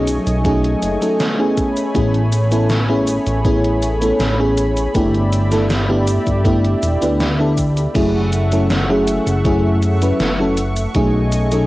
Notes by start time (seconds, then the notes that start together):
Already playing: B1 F#3 A3 C#4 D#4 G#4 D#5 G#5 C#6
0.07 closed hi-hat, cabasa
0.27 B1, closed hi-hat, cabasa
0.44 F#3 A3 C#4 D#4 G#4, kick, closed hi-hat, cabasa
0.64 closed hi-hat
0.82 F#1, closed hi-hat, cabasa
1.01 F#3 A3 C#4 D#4 A4, closed hi-hat, cabasa
1.20 snare, closed hi-hat, cabasa
1.38 A3 B3 C#4 E4 G#4
1.57 C#5 B5, kick, closed hi-hat, cabasa
1.77 closed hi-hat, cabasa
1.94 A1 A3 B3 C#4 E4 G#4, kick, closed hi-hat, cabasa
2.14 closed hi-hat
2.32 closed hi-hat, cabasa
2.51 A3 B3 C#4 E4 A4, closed hi-hat, cabasa
2.70 snare, closed hi-hat, cabasa
2.88 A3 B3 C#4 E4 G#4
3.08 closed hi-hat, cabasa
3.27 A1, closed hi-hat, cabasa
3.44 A3 B3 C#4 E4 G#4, kick, closed hi-hat, cabasa
3.64 closed hi-hat
3.83 closed hi-hat, cabasa
4.01 A3 B3 C#4 E4 A4, closed hi-hat, cabasa
4.20 A1, snare, closed hi-hat, cabasa
4.39 A3 B3 C#4 E4 G#4
4.58 closed hi-hat, cabasa
4.77 closed hi-hat, cabasa
4.94 G1 A3 B3 D4 E4 G4 D5 E5, kick, closed hi-hat, cabasa
5.14 closed hi-hat
5.33 closed hi-hat, cabasa
5.51 A3 B3 D4 E4 A4, snare, closed hi-hat, cabasa
5.70 snare, closed hi-hat, cabasa
5.88 A3 B3 D4 E4 G4
6.07 closed hi-hat, cabasa
6.27 G1, kick, closed hi-hat, cabasa
6.44 A3 B3 D4 E4 G4, kick, closed hi-hat, cabasa
6.64 closed hi-hat
6.83 E1, closed hi-hat, cabasa
7.01 D2 A3 B3 D4 E4 B4, closed hi-hat, cabasa
7.20 snare, closed hi-hat, cabasa
7.39 A3 B3 D4 E4 A4
7.58 kick, closed hi-hat, cabasa
7.77 closed hi-hat, cabasa
7.94 F#1 F#3 A3 C#4 E4 G#4 E5 F#5 C#6, kick, closed hi-hat, crash, cabasa
8.33 closed hi-hat, cabasa
8.52 F#3 A3 C#4 E4 A4, closed hi-hat, cabasa
8.70 snare, closed hi-hat, cabasa
8.89 F#3 A3 C#4 E4 G#4
9.07 closed hi-hat, cabasa
9.27 F#1, closed hi-hat, cabasa
9.45 F#3 A3 C#4 E4 G#4, kick, closed hi-hat, cabasa
9.83 closed hi-hat, cabasa
10.01 F#3 A3 C#4 E4 B4, closed hi-hat, cabasa
10.20 F#1, snare, closed hi-hat, cabasa
10.39 F#3 A3 C#4 E4 A4
10.57 closed hi-hat, cabasa
10.77 closed hi-hat, cabasa
10.95 B1 F#3 A3 C#4 D#4 G#4 D#5 G#5, kick, closed hi-hat, cabasa
11.32 closed hi-hat, cabasa
11.52 F#3 A3 C#4 D#4 A4, closed hi-hat, cabasa